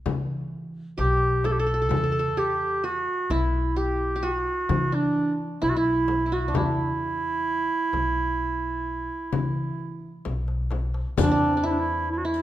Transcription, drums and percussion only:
0.06 frame drum medium
0.06 darbuka dum medium
0.99 darbuka tek medium
0.99 frame drum medium
1.44 darbuka tek medium
1.44 frame drum medium
1.91 frame drum medium
1.91 darbuka dum medium
2.84 darbuka ka soft
3.07 darbuka ka soft
3.30 darbuka tek medium
3.30 frame drum medium
4.69 darbuka dum medium
4.69 frame drum medium
5.62 darbuka tek medium
5.62 frame drum medium
6.08 darbuka tek medium
6.08 frame drum medium
6.54 darbuka dum medium
6.54 frame drum medium
7.47 darbuka ka soft
7.70 darbuka ka soft
7.93 darbuka tek medium
7.93 frame drum soft
8.16 darbuka ka soft
8.87 darbuka ka soft
9.33 frame drum medium
9.33 darbuka dum medium
9.79 darbuka ka soft
10.25 darbuka tek soft
10.25 frame drum medium
10.48 darbuka ka medium
10.71 darbuka tek medium
10.71 frame drum medium
10.94 darbuka ka medium
11.17 riq medium
11.17 darbuka dum medium
11.17 frame drum medium
12.34 riq soft

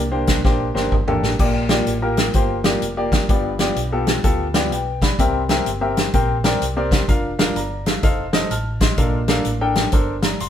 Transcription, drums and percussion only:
0.27 kick medium
0.27 snare loud
0.27 closed hi-hat medium
0.45 kick loud
0.45 snare medium
0.76 snare medium
0.92 kick medium
0.92 mid tom medium
1.08 floor tom medium
1.23 snare medium
1.39 kick loud
1.39 crash medium
1.69 snare loud
1.69 closed hi-hat medium
1.87 closed hi-hat medium
2.17 snare medium
2.17 closed hi-hat medium
2.34 kick loud
2.34 closed hi-hat medium
2.64 snare loud
2.64 closed hi-hat medium
2.82 closed hi-hat medium
3.12 kick medium
3.12 snare loud
3.12 closed hi-hat medium
3.29 kick loud
3.29 closed hi-hat medium
3.59 snare loud
3.59 closed hi-hat medium
3.76 closed hi-hat medium
4.07 snare loud
4.07 closed hi-hat medium
4.24 kick loud
4.24 closed hi-hat medium
4.54 snare loud
4.54 closed hi-hat medium
4.72 closed hi-hat medium
5.02 kick medium
5.02 snare loud
5.02 closed hi-hat medium
5.19 kick loud
5.19 closed hi-hat medium
5.49 snare medium
5.49 closed hi-hat medium
5.66 closed hi-hat medium
5.97 snare loud
5.97 closed hi-hat medium
6.14 kick loud
6.14 closed hi-hat medium
6.44 snare loud
6.44 closed hi-hat medium
6.62 closed hi-hat medium
6.91 kick medium
6.91 snare loud
6.91 closed hi-hat medium
7.09 kick loud
7.09 closed hi-hat medium
7.39 snare loud
7.39 closed hi-hat medium
7.56 closed hi-hat medium
7.86 snare loud
7.86 closed hi-hat medium
8.03 kick loud
8.03 closed hi-hat medium
8.33 snare loud
8.33 closed hi-hat medium
8.51 closed hi-hat medium
8.81 kick medium
8.81 snare loud
8.81 closed hi-hat medium
8.98 kick loud
8.98 closed hi-hat medium
9.28 snare loud
9.28 closed hi-hat medium
9.45 closed hi-hat medium
9.75 snare loud
9.75 closed hi-hat medium
9.92 kick loud
9.92 closed hi-hat medium
10.23 snare loud
10.23 closed hi-hat medium
10.40 closed hi-hat medium

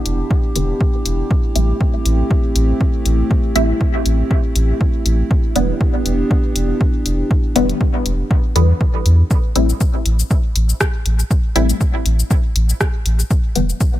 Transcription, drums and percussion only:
0.06 closed hi-hat medium
0.31 kick loud
0.56 closed hi-hat medium
0.81 kick loud
1.06 closed hi-hat medium
1.31 kick loud
1.56 closed hi-hat medium
1.81 kick loud
2.06 closed hi-hat medium
2.31 kick loud
2.56 closed hi-hat medium
2.81 kick loud
3.06 closed hi-hat medium
3.31 kick loud
3.56 closed hi-hat medium
3.81 kick loud
4.06 closed hi-hat medium
4.31 kick loud
4.56 closed hi-hat medium
4.81 kick loud
5.06 closed hi-hat medium
5.31 kick loud
5.56 closed hi-hat medium
5.81 kick loud
6.06 closed hi-hat medium
6.31 kick loud
6.56 closed hi-hat medium
6.81 kick loud
7.06 closed hi-hat medium
7.31 kick loud
7.56 closed hi-hat medium
7.69 closed hi-hat soft
7.81 kick loud
8.06 closed hi-hat medium
8.31 kick loud
8.56 closed hi-hat medium
8.81 kick loud
9.06 closed hi-hat medium
9.31 kick loud
9.31 shaker soft
9.56 closed hi-hat medium
9.69 shaker medium
9.81 kick loud
9.81 shaker soft
10.06 closed hi-hat medium
10.19 shaker medium
10.31 kick loud
10.31 shaker soft
10.56 closed hi-hat medium
10.69 shaker medium
10.81 kick loud
10.81 cross-stick loud
10.81 shaker soft
11.06 closed hi-hat medium
11.19 shaker medium
11.31 kick loud
11.31 shaker soft
11.56 closed hi-hat medium
11.69 closed hi-hat soft
11.69 shaker medium
11.81 kick loud
11.81 shaker soft
12.06 closed hi-hat medium
12.19 shaker medium
12.31 kick loud
12.31 shaker soft
12.56 closed hi-hat medium
12.69 shaker medium
12.81 kick loud
12.81 cross-stick medium
12.81 shaker soft
13.06 closed hi-hat medium
13.19 shaker soft
13.31 kick loud
13.31 shaker soft
13.56 closed hi-hat medium
13.69 shaker medium
13.81 kick loud
13.81 shaker soft

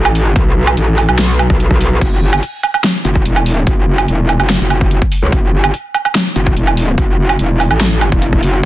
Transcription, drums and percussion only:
0.05 low woodblock medium
0.15 open hi-hat medium
0.36 kick loud
0.36 closed hi-hat medium
0.67 closed hi-hat medium
0.67 low woodblock medium
0.77 closed hi-hat medium
0.98 open hi-hat medium
0.98 low woodblock medium
1.09 low woodblock medium
1.19 snare loud
1.19 closed hi-hat medium
1.39 closed hi-hat medium
1.39 low woodblock medium
1.50 kick medium
1.60 closed hi-hat medium
1.71 kick medium
1.81 open hi-hat loud
2.01 kick loud
2.01 closed hi-hat medium
2.01 crash medium
2.33 closed hi-hat medium
2.33 low woodblock medium
2.43 closed hi-hat medium
2.63 closed hi-hat medium
2.63 low woodblock medium
2.74 low woodblock medium
2.84 snare loud
2.84 closed hi-hat medium
3.05 closed hi-hat medium
3.16 kick medium
3.25 closed hi-hat medium
3.36 low woodblock medium
3.46 open hi-hat loud
3.67 kick loud
3.67 closed hi-hat medium
3.98 closed hi-hat medium
3.98 low woodblock medium
4.08 closed hi-hat medium
4.29 closed hi-hat medium
4.29 low woodblock soft
4.40 low woodblock medium
4.50 snare loud
4.50 closed hi-hat medium
4.70 closed hi-hat medium
4.70 low woodblock medium
4.81 kick medium
4.91 closed hi-hat medium
5.02 kick medium
5.12 open hi-hat medium
5.32 kick loud
5.32 closed hi-hat medium
5.64 closed hi-hat medium
5.64 low woodblock medium
5.74 closed hi-hat medium
5.94 closed hi-hat medium
5.94 low woodblock medium
6.05 low woodblock soft
6.15 snare loud
6.15 closed hi-hat medium
6.36 closed hi-hat medium
6.47 kick medium
6.57 closed hi-hat medium
6.67 low woodblock medium
6.77 open hi-hat medium
6.98 kick loud
6.98 closed hi-hat medium
7.29 closed hi-hat medium
7.29 low woodblock medium
7.39 closed hi-hat medium
7.60 open hi-hat medium
7.60 low woodblock medium
7.71 low woodblock medium
7.81 snare loud
7.81 closed hi-hat medium
8.01 closed hi-hat medium
8.01 low woodblock medium
8.12 kick medium
8.22 closed hi-hat medium
8.33 kick medium
8.43 open hi-hat medium

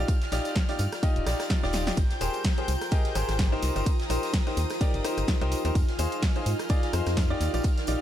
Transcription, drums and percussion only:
0.08 kick loud
0.08 closed hi-hat medium
0.08 tambourine soft
0.22 snare medium
0.22 closed hi-hat soft
0.32 snare loud
0.32 open hi-hat medium
0.32 open hi-hat loud
0.32 tambourine medium
0.45 snare soft
0.45 closed hi-hat medium
0.45 tambourine medium
0.56 kick loud
0.56 snare loud
0.56 closed hi-hat medium
0.56 tambourine soft
0.69 snare medium
0.69 open hi-hat medium
0.79 closed hi-hat medium
0.79 open hi-hat loud
0.79 tambourine loud
0.92 cross-stick medium
0.92 snare soft
0.92 closed hi-hat medium
0.92 tambourine medium
1.03 kick loud
1.03 snare soft
1.03 closed hi-hat medium
1.03 tambourine soft
1.16 closed hi-hat soft
1.26 cross-stick medium
1.26 snare loud
1.26 open hi-hat medium
1.26 open hi-hat loud
1.26 tambourine medium
1.39 cross-stick medium
1.39 snare loud
1.39 closed hi-hat medium
1.39 open hi-hat medium
1.39 tambourine medium
1.50 kick loud
1.50 snare loud
1.50 closed hi-hat medium
1.50 tambourine soft
1.63 snare loud
1.63 open hi-hat medium
1.73 snare loud
1.73 snare medium
1.73 open hi-hat loud
1.73 open hi-hat medium
1.73 tambourine medium
1.87 snare loud
1.87 closed hi-hat medium
1.87 open hi-hat medium
1.87 tambourine medium
1.97 kick loud
1.97 closed hi-hat medium
1.97 ride medium
1.97 tambourine soft
2.10 snare medium
2.10 closed hi-hat soft
2.21 closed hi-hat medium
2.21 open hi-hat loud
2.21 tambourine medium
2.33 closed hi-hat medium
2.33 tambourine soft
2.44 kick loud
2.44 snare loud
2.44 closed hi-hat medium
2.44 open hi-hat medium
2.44 ride medium
2.44 tambourine soft
2.58 closed hi-hat soft
2.68 closed hi-hat medium
2.68 open hi-hat loud
2.68 tambourine medium
2.81 cross-stick medium
2.81 snare soft
2.81 closed hi-hat medium
2.81 tambourine medium
2.91 kick loud
2.91 closed hi-hat medium
2.91 ride medium
2.91 tambourine soft
3.05 snare soft
3.05 closed hi-hat soft
3.15 cross-stick medium
3.15 closed hi-hat medium
3.15 open hi-hat loud
3.15 tambourine medium
3.29 cross-stick medium
3.29 snare medium
3.29 closed hi-hat medium
3.29 tambourine medium
3.39 kick loud
3.39 snare loud
3.39 closed hi-hat medium
3.39 ride medium
3.39 tambourine soft
3.62 snare soft
3.62 closed hi-hat medium
3.62 open hi-hat loud
3.62 tambourine medium
3.76 closed hi-hat medium
3.76 tambourine medium
3.86 kick loud
3.86 closed hi-hat medium
3.86 ride medium
3.86 tambourine soft
4.00 snare medium
4.00 closed hi-hat soft
4.10 closed hi-hat medium
4.10 open hi-hat loud
4.10 tambourine medium
4.23 snare soft
4.23 closed hi-hat medium
4.23 tambourine medium
4.33 kick loud
4.33 snare loud
4.33 closed hi-hat medium
4.33 ride medium
4.33 tambourine soft
4.47 snare medium
4.47 closed hi-hat soft
4.57 closed hi-hat medium
4.57 open hi-hat loud
4.57 tambourine loud
4.70 cross-stick medium
4.70 snare medium
4.70 closed hi-hat medium
4.70 tambourine medium
4.81 kick loud
4.81 snare soft
4.81 closed hi-hat medium
4.81 ride medium
4.81 tambourine soft
4.94 closed hi-hat soft
5.04 cross-stick medium
5.04 snare soft
5.04 closed hi-hat medium
5.04 open hi-hat loud
5.04 tambourine medium
5.17 cross-stick medium
5.17 closed hi-hat medium
5.17 tambourine medium
5.27 kick loud
5.27 snare loud
5.27 closed hi-hat medium
5.27 ride medium
5.27 tambourine soft
5.41 closed hi-hat soft
5.52 closed hi-hat medium
5.52 open hi-hat loud
5.52 tambourine medium
5.65 closed hi-hat medium
5.65 tambourine medium
5.75 kick loud
5.75 closed hi-hat medium
5.75 ride medium
5.75 tambourine soft
5.89 snare soft
5.89 closed hi-hat soft
5.98 closed hi-hat medium
5.98 open hi-hat loud
5.98 tambourine loud
6.12 closed hi-hat medium
6.12 tambourine medium
6.22 kick loud
6.22 snare loud
6.22 closed hi-hat medium
6.22 open hi-hat medium
6.22 ride medium
6.22 tambourine soft
6.36 closed hi-hat soft
6.46 closed hi-hat medium
6.46 open hi-hat loud
6.46 tambourine loud
6.59 cross-stick medium
6.59 snare soft
6.59 closed hi-hat soft
6.59 tambourine medium
6.69 kick loud
6.69 closed hi-hat medium
6.69 ride medium
6.69 tambourine soft
6.83 snare soft
6.83 closed hi-hat soft
6.93 cross-stick medium
6.93 closed hi-hat medium
6.93 open hi-hat loud
6.93 tambourine loud
7.06 cross-stick medium
7.06 snare medium
7.06 closed hi-hat medium
7.06 tambourine medium
7.17 kick loud
7.17 snare loud
7.17 closed hi-hat medium
7.17 ride medium
7.17 tambourine soft
7.41 snare soft
7.41 closed hi-hat medium
7.41 open hi-hat loud
7.41 tambourine medium
7.54 closed hi-hat medium
7.54 tambourine medium
7.63 kick loud
7.63 closed hi-hat medium
7.63 ride medium
7.63 tambourine soft
7.78 snare medium
7.78 closed hi-hat soft
7.87 closed hi-hat medium
7.87 open hi-hat loud
7.87 tambourine loud

